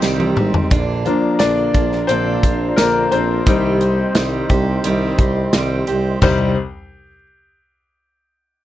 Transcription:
Already playing: G3 C4 D#4 G4 D#5 C6
0.01 C2 C3 D#3 G3 C4 G4, snare, tambourine
0.20 high tom
0.36 G#1 G3 C4 G4, mid tom
0.54 floor tom
0.70 A#1 A#2 D3 A#3 D4 F4 D5 A#5, kick, closed hi-hat
1.05 F3 A#3 D4 F4, closed hi-hat
1.39 A#1 D3 A#3 D4 F4 D5, snare, closed hi-hat, tambourine
1.73 A#1 A#3 D4 F4, kick, closed hi-hat
1.92 snare
2.07 A#1 A#2 D3 A#3 C4 D4 F4 C5, closed hi-hat
2.43 A#1 A#3 D4 F4, kick, closed hi-hat
2.76 A#1 D3 A#3 D4 F4 A#4, snare, closed hi-hat, tambourine
3.11 A#1 A#3 C4 D4 F4 C5, closed hi-hat
3.46 C2 C3 D#3 G3 C4 D#4 G4 D#5 C6, kick, closed hi-hat
3.81 G3 C4 G4, closed hi-hat
4.15 C2 D#3 G3 C4 G4, snare, closed hi-hat, tambourine
4.49 C2 G3 C4 G4, kick, closed hi-hat
4.84 C2 C3 D#3 G3 C4 G4, closed hi-hat
5.18 C2 G3 C4 G4, kick, closed hi-hat
5.53 C2 D#3 G3 C4 G4, snare, closed hi-hat, tambourine
5.87 C2 G3 C4 G4, closed hi-hat
6.22 C2 C3 D#3 G3 C4 D#4 G4 C5 G5, kick, floor tom, tambourine, crash

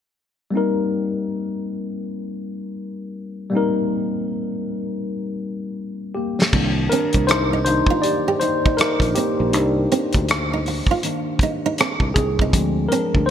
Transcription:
0.51 G3 A#3 C4
0.56 D#4 A#4
3.50 G3 A#3 C4
3.55 D#4 A#4
6.15 A#3 G4
6.42 snare
6.53 C2 D#3 A#3 D4, kick, crash
6.89 C4 D4 A#4, closed hi-hat
7.13 C2, kick, closed hi-hat
7.27 D#4 C5, cross-stick, closed hi-hat
7.53 D#4
7.65 D#3 A#3 D4 D#4 C5, muted nylon-string guitar stroke, closed hi-hat
7.87 F4, kick
8.02 G4 D5, closed hi-hat
8.28 G4
8.40 D#4 C5, muted nylon-string guitar stroke, closed hi-hat
8.66 D#4, kick
8.77 D#4 A#4, muted fretless electric bass stroke, cross-stick, closed hi-hat
9.00 A#1, kick, closed hi-hat
9.15 A#3 C4 G4, closed hi-hat
9.40 A#1
9.52 C2 A#3 D4 D#4, closed hi-hat
9.92 C4, closed hi-hat
10.13 D2, kick, closed hi-hat
10.29 cross-stick, closed hi-hat
10.53 D#4
10.66 muted nylon-string guitar stroke, open hi-hat
10.87 kick
10.91 F4
11.03 D#3 A#3 D4, muted nylon-string guitar stroke, closed hi-hat
11.39 D#4, kick, closed hi-hat
11.66 D#4
11.78 C4, cross-stick, closed hi-hat
12.00 C2, kick
12.14 C2 C4 G#4, muted nylon-string guitar stroke, kick, closed hi-hat
12.39 D#4, kick
12.52 D2 F3 G#3 C4, kick, closed hi-hat
12.89 C4 D4 A#4, closed hi-hat
13.15 D2, kick
13.26 C5

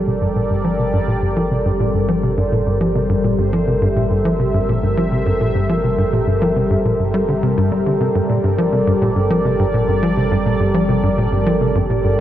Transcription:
Already playing: G1 G3 C4 G4 A4 A#4 C5 D5
0.07 C3
0.21 G2
0.36 A#2
0.50 G2
0.64 F3
0.79 C3
0.93 G2
1.08 A#2
1.22 G2
1.37 F3
1.51 C3
1.66 G2
1.80 A#2
1.95 G2
2.09 F3
2.23 C3
2.38 G2
2.52 A#2
2.66 G2
2.81 F3
2.95 C3
3.09 G2
3.24 A#2
3.38 G2 E5
3.53 F3
3.67 C3
3.82 G2
3.96 A#2
4.11 G2
4.25 F3
4.39 C3
4.54 G2
4.68 A#2
4.83 G2
4.97 F3
5.12 C3
5.26 G2
5.40 A#2
5.55 G2
5.69 F3
5.84 C3
5.98 G2
6.13 A#2
6.27 G2
6.42 F3
6.56 C3
6.70 G2
6.85 A#2
7.00 G2
7.14 G3
7.28 D3
7.43 C3
7.57 G2
7.72 G3
7.86 D3
8.00 G1 C3 D5
8.15 G2
8.29 A#2
8.44 G2
8.58 F3
8.73 C3
8.87 G2
9.02 A#2
9.16 G2
9.30 F3
9.45 C3
9.59 G2
9.74 A#2
9.88 G2
10.03 F3
10.17 C3
10.31 G2
10.46 A#2
10.60 G2
10.75 F3
10.89 C3
11.03 G2
11.18 A#2
11.32 G2
11.47 F3
11.61 C3
11.75 G2
11.90 A#2
12.04 G2

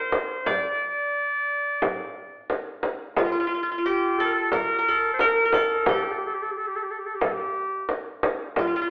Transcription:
Already playing: A#4 C5
0.12 frame drum
0.46 D5, frame drum
1.82 frame drum
2.50 frame drum
2.83 frame drum
3.16 F4, frame drum
3.25 F4
3.32 F4
3.40 F4
3.47 F4
3.54 F4
3.63 F4
3.72 F4
3.78 F4
3.86 G4
4.18 A4
4.25 A#4
4.32 A4
4.52 A#4, frame drum
4.79 A#4
4.88 A4
5.14 C5
5.19 A#4, frame drum
5.45 A#4
5.53 A4, frame drum
5.86 G4, frame drum
5.95 A4
6.04 G4
6.11 A4
6.18 G4
6.27 A4
6.34 G4
6.43 A4
6.52 G4
6.57 A4
6.67 G4
6.76 A4
6.83 G4
6.91 A4
6.99 G4
7.06 A4
7.15 G4
7.21 A4, frame drum
7.32 G4
7.89 frame drum
8.23 frame drum
8.56 F4, frame drum
8.67 F4
8.76 F4
8.82 F4

